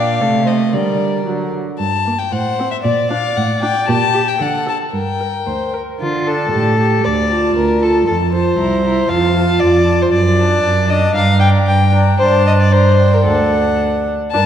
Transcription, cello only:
0.00 0.21 A#2 soft
0.20 0.73 C3 medium
0.72 1.25 D3 soft
1.26 1.58 D3 soft
1.79 2.21 G2 soft
2.32 2.74 A2 soft
2.84 3.25 A#2 medium
3.37 3.77 A2 medium
3.88 4.29 A#2 medium
4.40 4.82 D3 medium
4.93 5.35 G2 soft
5.47 5.89 D2 soft
6.00 6.46 D3 medium
6.53 6.98 A2 soft
7.04 7.49 D2 medium
7.56 8.01 D2 soft
8.07 8.53 F2 medium
8.58 9.04 C2 soft
9.10 9.55 F2 medium
9.61 10.07 F2 medium
10.13 10.58 F#2 medium
10.63 11.09 F#2 medium
11.15 11.61 G2 medium
11.67 12.13 G2 medium
12.20 13.28 G2 medium
13.26 14.13 D2 soft
14.34 14.46 G2 medium

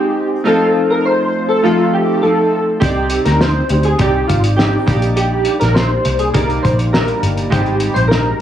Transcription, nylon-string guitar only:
0.00 0.45 G#3 medium
0.00 0.46 C4 medium
0.00 0.47 D#4 medium
0.00 0.48 G4 medium
0.45 1.63 F3 medium
0.45 1.64 C4 medium
0.45 1.65 D#4 medium
0.49 1.65 A4 medium
1.64 2.22 F3 soft
1.64 2.24 C4 soft
1.64 2.24 D#4 medium
1.64 2.24 A4 medium
2.23 2.82 F3 medium
2.23 2.81 C4 medium
2.23 2.82 D#4 medium
2.23 2.83 A4 medium
2.82 3.70 C4 medium
2.82 3.72 D#4 medium
2.82 3.71 G4 medium
2.82 3.70 D5 medium
3.70 3.99 D#4 soft
3.70 4.00 G4 soft
3.70 3.99 D5 soft
3.99 4.57 C4 soft
3.99 4.58 D#4 soft
3.99 4.59 G4 medium
3.99 4.60 D5 medium
4.58 4.87 C4 medium
4.58 4.86 D#4 medium
4.58 4.86 G4 medium
4.58 4.89 D5 medium
4.87 6.34 G3 medium
4.87 6.35 D4 medium
4.87 6.36 D#4 medium
4.91 6.33 A#2 soft
6.34 6.92 A#2 soft
6.34 6.94 G3 medium
6.34 6.94 D4 medium
6.34 6.95 D#4 medium
6.93 7.51 A#2 medium
6.93 7.51 G3 medium
6.93 7.52 D4 medium
6.93 7.52 D#4 medium
7.51 8.40 G#2 medium
7.51 8.40 G3 medium
7.51 8.41 C4 medium
7.51 8.40 D#4 medium

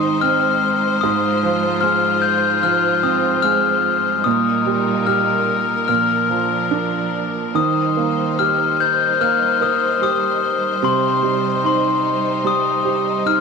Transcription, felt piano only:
0.00 1.00 G#2 medium
0.00 1.05 D#3 medium
0.00 0.19 C4 medium
0.00 1.00 D#4 soft
0.22 1.01 C4 medium
1.03 4.22 G#2 medium
1.43 2.62 F3 medium
1.83 3.40 G#3 medium
2.63 4.21 F3 medium
3.03 4.22 C4 medium
3.44 4.23 G#3 medium
4.26 5.85 A#2 medium
4.66 5.85 G3 medium
5.07 5.86 G4 medium
5.89 7.52 A#2 medium
6.29 7.51 F3 soft
6.71 7.53 D4 medium
7.55 10.79 D#3 medium
7.97 9.19 A#3 soft
8.39 9.98 G4 medium
9.21 10.79 A#3 medium
9.61 10.79 A#4 medium
10.02 10.80 G4 medium
10.83 13.40 C3 medium
11.23 12.43 G3 medium
11.64 13.21 D#4 medium
12.44 13.40 G3 medium
12.85 13.40 G4 medium
13.26 13.40 D#4 soft

